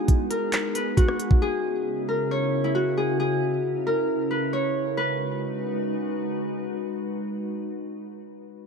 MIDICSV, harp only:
0, 0, Header, 1, 2, 480
1, 0, Start_track
1, 0, Key_signature, 5, "minor"
1, 0, Tempo, 444444
1, 1531, Time_signature, 4, 2, 24, 8
1, 9360, End_track
2, 0, Start_track
2, 0, Title_t, "Harp"
2, 0, Program_c, 0, 46
2, 0, Note_on_c, 0, 64, 87
2, 0, Note_on_c, 0, 66, 81
2, 0, Note_on_c, 0, 68, 109
2, 0, Note_on_c, 0, 71, 85
2, 329, Note_on_c, 0, 70, 71
2, 394, Note_off_c, 0, 71, 0
2, 812, Note_on_c, 0, 71, 76
2, 877, Note_off_c, 0, 70, 0
2, 1043, Note_off_c, 0, 66, 0
2, 1048, Note_on_c, 0, 66, 86
2, 1528, Note_off_c, 0, 68, 0
2, 1532, Note_on_c, 0, 68, 96
2, 1834, Note_off_c, 0, 64, 0
2, 2252, Note_on_c, 0, 70, 71
2, 2317, Note_off_c, 0, 71, 0
2, 2497, Note_on_c, 0, 73, 89
2, 2853, Note_on_c, 0, 64, 89
2, 2963, Note_off_c, 0, 66, 0
2, 2967, Note_on_c, 0, 66, 86
2, 3208, Note_off_c, 0, 68, 0
2, 3212, Note_on_c, 0, 68, 80
2, 3448, Note_off_c, 0, 68, 0
2, 3452, Note_on_c, 0, 68, 94
2, 4171, Note_off_c, 0, 70, 0
2, 4175, Note_on_c, 0, 70, 76
2, 4562, Note_off_c, 0, 73, 0
2, 4651, Note_on_c, 0, 71, 78
2, 4715, Note_off_c, 0, 70, 0
2, 4893, Note_on_c, 0, 73, 89
2, 5367, Note_off_c, 0, 71, 0
2, 5371, Note_on_c, 0, 71, 89
2, 5599, Note_off_c, 0, 66, 0
2, 5674, Note_off_c, 0, 64, 0
2, 5907, Note_off_c, 0, 68, 0
2, 6957, Note_off_c, 0, 73, 0
2, 7584, Note_off_c, 0, 71, 0
2, 9360, End_track
0, 0, End_of_file